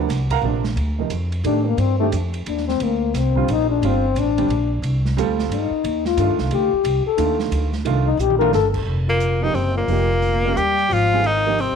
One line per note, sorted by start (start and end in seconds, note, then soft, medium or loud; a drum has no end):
0.00 0.29 F#4 medium
0.00 0.29 C5 medium
0.00 0.29 D5 medium
0.00 0.29 F#5 medium
0.09 0.41 C2 medium
0.09 snare soft
0.09 hi-hat pedal medium
0.09 ride medium
0.30 0.39 A#4 medium
0.30 0.39 F5 medium
0.30 0.39 F#5 medium
0.30 0.39 A#5 loud
0.30 kick medium
0.30 ride medium
0.41 0.75 A#1 medium
0.41 0.63 C3 medium
0.41 0.63 F3 medium
0.41 0.63 A#3 medium
0.41 0.63 D4 medium
0.64 snare medium
0.76 1.09 D2 medium
0.76 ride medium
0.99 1.10 C3 medium
0.99 1.10 F3 medium
0.99 1.10 A#3 medium
0.99 1.11 D#4 medium
1.10 1.43 F2 medium
1.10 hi-hat pedal medium
1.10 ride medium
1.32 ride medium
1.44 1.77 A2 medium
1.44 1.64 D#3 medium
1.44 1.64 A3 medium
1.44 1.65 D4 medium
1.44 1.68 D4 medium
1.44 1.65 G4 medium
1.44 ride medium
1.67 1.81 A#3 medium
1.77 2.11 G2 medium
1.77 1.99 C4 medium
1.77 ride medium
1.99 2.11 D#3 medium
1.99 2.07 A3 medium
1.99 2.12 A3 medium
1.99 2.12 D4 medium
1.99 2.12 G4 medium
2.12 2.45 F2 medium
2.12 hi-hat pedal medium
2.12 ride medium
2.34 ride medium
2.46 2.79 D#2 medium
2.46 2.67 D4 medium
2.46 ride medium
2.58 snare soft
2.68 2.85 C4 loud
2.68 snare soft
2.80 3.13 D2 medium
2.80 3.18 A#3 medium
2.80 ride medium
3.14 3.47 C2 medium
3.14 3.53 C4 medium
3.14 snare soft
3.14 hi-hat pedal medium
3.14 ride medium
3.36 3.47 D3 medium
3.36 3.47 G3 medium
3.36 3.47 C4 medium
3.36 3.47 F4 medium
3.36 kick medium
3.48 3.81 A#1 medium
3.48 3.70 D#4 loud
3.48 ride medium
3.70 3.88 D4 medium
3.82 4.14 G1 medium
3.82 4.02 D3 medium
3.82 4.02 G3 medium
3.82 4.02 C4 medium
3.82 4.02 F4 medium
3.82 ride medium
3.87 4.21 C4 loud
4.15 4.48 A1 medium
4.15 4.72 D4 loud
4.15 hi-hat pedal soft
4.15 ride medium
4.37 4.48 D3 medium
4.37 4.49 G3 medium
4.37 4.49 C4 medium
4.37 4.49 D4 medium
4.37 ride medium
4.48 4.82 A#1 medium
4.48 ride medium
4.82 5.15 C2 medium
4.82 ride medium
5.05 snare soft
5.17 5.49 D2 medium
5.17 5.68 G3 medium
5.17 5.68 C4 medium
5.17 5.68 F4 medium
5.17 5.69 A4 medium
5.17 hi-hat pedal medium
5.17 ride medium
5.39 snare medium
5.50 5.70 G2 medium
5.50 6.03 D#4 medium
5.50 ride medium
5.70 muted upright bass stroke soft
5.84 6.17 D#2 medium
5.84 ride medium
6.05 6.37 F4 medium
6.05 snare medium
6.17 6.29 G2 loud
6.17 6.69 D#3 medium
6.17 6.69 A3 medium
6.17 6.70 D4 medium
6.17 6.70 F4 medium
6.17 hi-hat pedal medium
6.17 ride medium
6.27 6.39 D#2 medium
6.38 6.51 C2 medium
6.38 snare soft
6.51 6.71 D2 medium
6.51 7.04 G4 medium
6.51 ride medium
6.73 muted upright bass stroke soft
6.84 7.04 C2 medium
6.84 ride medium
7.06 7.38 A4 medium
7.06 muted upright bass stroke soft
7.17 7.51 D#2 medium
7.17 7.69 D#3 medium
7.17 7.69 A3 medium
7.17 7.70 D4 medium
7.17 7.70 F4 medium
7.17 hi-hat pedal soft
7.17 ride medium
7.39 snare medium
7.51 7.84 D2 medium
7.51 ride medium
7.73 snare soft
7.85 8.17 C2 medium
7.85 8.05 D#3 medium
7.85 8.06 A3 medium
7.85 8.06 D4 medium
7.85 8.06 F4 medium
7.85 ride medium
8.06 8.22 D#4 loud
8.17 8.52 A#1 medium
8.17 8.39 G4 loud
8.17 hi-hat pedal medium
8.30 mid tom medium
8.39 8.52 D#3 medium
8.39 8.52 A3 medium
8.39 8.52 D4 medium
8.39 8.53 F4 medium
8.39 8.52 A#4 loud
8.39 mid tom loud
8.53 8.86 G1 medium
8.53 8.67 A4 loud
8.53 snare medium
8.53 hi-hat pedal medium
8.74 kick medium
8.74 crash medium
8.86 9.51 F1 medium
9.08 9.44 A#2 medium
9.08 9.45 A#3 medium
9.20 closed hi-hat medium
9.42 9.56 D#3 medium
9.42 9.54 F3 medium
9.42 9.55 A#3 medium
9.42 9.56 D#4 medium
9.42 9.55 D#4 medium
9.42 9.55 G4 medium
9.54 9.86 F#1 medium
9.54 9.74 C3 medium
9.54 9.76 C4 medium
9.54 open hi-hat soft
9.75 10.56 A#2 medium
9.75 10.59 A#3 medium
9.88 10.52 F1 medium
9.88 10.08 F3 medium
9.88 10.09 A#3 medium
9.88 10.09 D#4 medium
9.88 10.10 G4 medium
9.88 open hi-hat soft
10.22 open hi-hat soft
10.45 10.56 G#3 medium
10.45 10.56 C#4 medium
10.45 10.57 G4 medium
10.45 10.57 A#4 medium
10.55 10.88 D#2 medium
10.55 10.91 G3 medium
10.55 10.95 G4 loud
10.55 closed hi-hat medium
10.78 open hi-hat soft
10.90 11.65 G#1 medium
10.90 11.25 F3 loud
10.90 11.28 F4 loud
10.90 open hi-hat medium
11.13 11.24 G3 medium
11.13 11.24 C4 medium
11.13 11.24 F4 medium
11.13 11.24 G#4 medium
11.23 11.62 D#3 medium
11.23 11.62 D#4 medium
11.23 closed hi-hat soft
11.47 11.58 F3 medium
11.47 11.58 A#3 medium
11.47 11.58 D#4 medium
11.47 11.58 G4 medium
11.59 11.76 C3 medium
11.59 11.76 C4 medium
11.59 open hi-hat soft
11.71 11.76 A#1 medium